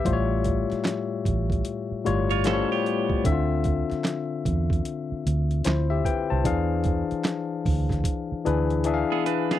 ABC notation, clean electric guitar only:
X:1
M:4/4
L:1/16
Q:"Swing 16ths" 1/4=75
K:Ddor
V:1 name="Clean electric guitar"
z8 z3 [F^c] [^CA] [B,G]3 | z16 | z12 z [B,^G] [DB] [B,G] |]